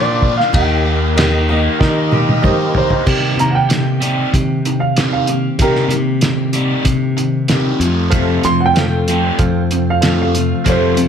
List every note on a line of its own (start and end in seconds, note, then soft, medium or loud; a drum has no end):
0.00 0.41 A#2 medium
0.00 0.22 D3 medium
0.00 0.52 F3 medium
0.00 0.53 A#3 medium
0.00 0.85 A#3 medium
0.00 0.22 D4 medium
0.00 0.51 D4 medium
0.00 0.54 D4 medium
0.00 0.34 F4 medium
0.00 0.51 F4 medium
0.00 0.54 F4 medium
0.00 0.55 F4 medium
0.00 0.34 A#4 medium
0.00 0.51 A#4 medium
0.00 0.35 C5 medium
0.00 0.37 D5 loud
0.00 0.51 D5 medium
0.22 0.55 D4 medium
0.22 kick medium
0.37 0.54 F5 medium
0.37 snare soft
0.53 1.67 D#2 loud
0.53 1.15 D#3 medium
0.53 1.17 D#3 medium
0.53 1.17 A#3 medium
0.53 3.04 D#4 medium
0.53 1.17 D#4 medium
0.53 0.97 G4 medium
0.53 3.04 G4 medium
0.53 1.18 G4 medium
0.53 0.98 A#4 medium
0.53 3.04 A#4 medium
0.53 3.04 D#5 medium
0.53 0.98 D#5 medium
0.53 1.76 G5 medium
0.53 kick loud
0.53 ride bell medium
0.85 1.48 A#3 medium
1.16 1.48 D#3 medium
1.16 2.76 D#3 medium
1.16 1.49 A#3 medium
1.16 1.50 D#4 medium
1.16 1.61 G4 medium
1.16 1.61 A#4 medium
1.16 1.61 D#5 medium
1.16 snare loud
1.16 ride bell medium
1.20 1.48 G4 medium
1.49 2.44 A#3 medium
1.49 2.13 A#3 soft
1.49 2.12 D#4 medium
1.49 2.10 G4 medium
1.49 2.42 D#5 medium
1.76 2.75 D#4 medium
1.76 2.24 G4 medium
1.76 2.24 A#4 medium
1.76 2.40 F5 medium
1.80 2.94 D#3 medium
1.80 2.24 D#5 medium
1.80 kick loud
1.80 snare medium
2.11 2.43 A#3 medium
2.11 2.43 D#4 medium
2.11 2.43 G4 medium
2.11 3.08 G4 medium
2.11 high tom medium
2.29 high tom medium
2.42 3.06 D#3 medium
2.42 3.06 A#3 medium
2.42 3.07 A#3 medium
2.42 3.07 D#4 medium
2.42 2.87 G4 medium
2.42 3.07 G4 medium
2.42 2.87 A#4 medium
2.42 2.75 C5 medium
2.42 2.87 D#5 loud
2.42 kick medium
2.42 mid tom medium
2.75 3.07 D#4 medium
2.75 3.07 C5 medium
2.75 floor tom medium
2.90 floor tom medium
3.06 3.36 C3 medium
3.06 3.38 C3 medium
3.06 3.35 C3 medium
3.06 3.39 D#3 medium
3.06 3.37 D#3 medium
3.06 3.37 G3 medium
3.06 3.39 A#3 medium
3.06 3.39 C4 medium
3.06 3.36 G4 medium
3.06 kick medium
3.06 crash medium
3.37 4.23 C3 medium
3.37 3.67 C3 medium
3.37 3.68 D#3 medium
3.37 3.71 C4 soft
3.37 3.70 G4 soft
3.37 3.54 A#5 medium
3.37 closed hi-hat medium
3.41 3.71 A#3 soft
3.51 3.54 F#5 medium
3.55 4.78 G5 medium
3.69 3.98 C3 medium
3.69 3.98 D#3 medium
3.69 4.02 D#3 medium
3.69 4.03 A#3 medium
3.69 4.01 C4 medium
3.69 4.00 G4 medium
3.69 snare loud
3.69 closed hi-hat medium
4.01 4.31 C3 medium
4.01 4.32 D#3 medium
4.01 4.32 G3 medium
4.01 4.98 A#3 soft
4.01 4.99 C4 soft
4.01 4.97 G4 medium
4.01 closed hi-hat medium
4.34 4.62 C3 medium
4.34 5.47 C3 medium
4.34 4.62 D#3 medium
4.34 kick loud
4.34 closed hi-hat medium
4.65 4.94 C3 medium
4.65 4.94 D#3 medium
4.65 closed hi-hat medium
4.80 5.11 F5 medium
4.96 5.26 C3 medium
4.96 5.27 D#3 medium
4.96 5.29 D#3 medium
4.96 5.27 G3 medium
4.96 5.30 A#3 medium
4.96 5.29 C4 medium
4.96 snare loud
4.96 closed hi-hat medium
5.01 5.28 G4 medium
5.13 5.59 F5 medium
5.27 5.57 C3 medium
5.27 5.57 D#3 medium
5.27 5.61 C4 soft
5.27 5.60 G4 soft
5.27 closed hi-hat medium
5.32 5.61 A#3 soft
5.59 5.88 C3 loud
5.59 5.90 C3 medium
5.59 5.92 C3 medium
5.59 5.90 D#3 medium
5.59 5.93 D#3 medium
5.59 5.91 G3 medium
5.59 5.92 A#3 medium
5.59 5.91 C4 medium
5.59 5.90 G4 medium
5.59 5.92 A#4 medium
5.59 kick loud
5.59 closed hi-hat medium
5.63 5.89 G4 medium
5.76 snare soft
5.89 6.75 C3 medium
5.89 6.20 C3 medium
5.89 6.20 D#3 medium
5.89 6.22 C4 soft
5.89 6.23 G4 soft
5.89 closed hi-hat medium
5.93 6.21 A#3 soft
6.21 6.52 C3 medium
6.21 6.54 D#3 medium
6.21 6.52 D#3 medium
6.21 6.54 A#3 medium
6.21 6.53 C4 medium
6.21 6.51 G4 medium
6.21 snare loud
6.21 closed hi-hat medium
6.53 6.84 C3 medium
6.53 6.84 D#3 medium
6.53 6.85 G3 medium
6.53 7.49 A#3 soft
6.53 7.50 C4 soft
6.53 7.49 G4 medium
6.53 closed hi-hat medium
6.85 7.71 C3 medium
6.85 7.14 C3 medium
6.85 7.15 D#3 medium
6.85 kick loud
6.85 closed hi-hat medium
7.17 7.46 C3 medium
7.17 7.46 D#3 medium
7.17 closed hi-hat medium
7.48 7.79 C3 medium
7.48 7.81 D#3 medium
7.48 7.80 D#3 medium
7.48 7.80 G3 medium
7.48 7.82 A#3 medium
7.48 7.82 C4 medium
7.48 snare loud
7.48 closed hi-hat medium
7.52 7.81 G4 medium
7.80 8.10 F2 medium
7.80 8.37 F2 medium
7.80 8.11 C3 medium
7.80 8.11 F3 loud
7.80 8.14 C4 soft
7.80 8.13 F4 medium
7.80 closed hi-hat medium
7.84 8.13 F3 soft
7.84 8.13 A3 soft
8.10 8.42 F2 medium
8.10 8.45 F2 medium
8.10 8.43 C3 loud
8.10 8.45 C3 medium
8.10 8.43 F3 medium
8.10 8.45 F3 medium
8.10 10.63 C4 medium
8.10 10.63 F4 medium
8.10 8.56 A4 loud
8.10 10.63 A4 medium
8.10 8.56 C5 medium
8.10 10.63 C5 medium
8.10 8.56 F5 loud
8.10 kick loud
8.10 closed hi-hat medium
8.14 8.45 A3 medium
8.14 8.44 C4 loud
8.14 8.43 F4 medium
8.43 9.30 F2 medium
8.43 8.73 F2 medium
8.43 8.73 C3 medium
8.43 8.74 F3 soft
8.43 8.75 A3 soft
8.43 8.76 C4 soft
8.43 8.76 F4 medium
8.43 8.60 C6 loud
8.43 closed hi-hat medium
8.60 8.64 F#5 medium
8.66 9.86 G5 loud
8.73 9.05 F2 medium
8.73 9.05 C3 medium
8.73 9.07 F3 medium
8.73 9.08 A3 medium
8.73 9.08 C4 medium
8.73 9.19 A4 medium
8.73 9.19 C5 medium
8.73 9.19 F5 medium
8.73 snare loud
8.73 closed hi-hat medium
8.78 9.07 F4 medium
9.08 9.38 F2 medium
9.08 9.39 C3 medium
9.08 9.39 F3 loud
9.08 10.02 A3 soft
9.08 10.05 C4 medium
9.08 10.03 F4 medium
9.08 closed hi-hat medium
9.12 10.01 F3 soft
9.39 10.53 F2 loud
9.39 9.69 F2 medium
9.39 9.69 C3 medium
9.39 9.83 A4 medium
9.39 9.84 C5 medium
9.39 9.84 F5 loud
9.39 kick loud
9.39 closed hi-hat medium
9.71 10.00 F2 medium
9.71 10.00 C3 medium
9.71 closed hi-hat medium
9.90 10.19 F5 medium
10.01 10.33 F2 medium
10.01 10.33 C3 medium
10.01 10.34 F3 medium
10.01 10.33 F3 loud
10.01 10.35 A3 medium
10.01 10.46 A4 medium
10.01 10.46 C5 medium
10.01 10.46 F5 medium
10.01 snare loud
10.01 closed hi-hat medium
10.05 10.35 C4 medium
10.05 10.33 F4 medium
10.22 10.66 F5 medium
10.34 10.63 F2 medium
10.34 10.63 C3 medium
10.34 10.66 F3 soft
10.34 10.66 A3 soft
10.34 10.66 C4 medium
10.34 10.66 F4 medium
10.34 closed hi-hat medium
10.64 10.95 F2 loud
10.64 10.97 F2 medium
10.64 10.95 F2 loud
10.64 10.95 C3 medium
10.64 10.98 C3 medium
10.64 10.96 F3 medium
10.64 10.97 F3 medium
10.64 10.96 A3 medium
10.64 10.95 C4 medium
10.64 11.08 F4 medium
10.64 10.94 F4 medium
10.64 11.08 A4 medium
10.64 11.08 C5 medium
10.64 11.08 F5 medium
10.64 kick loud
10.64 closed hi-hat medium
10.69 10.98 C5 medium
10.95 11.08 F2 medium
10.95 11.08 C3 medium
10.95 11.08 F3 soft
10.95 11.08 A3 medium
10.95 11.08 C4 soft
10.95 11.08 F4 soft
10.95 closed hi-hat medium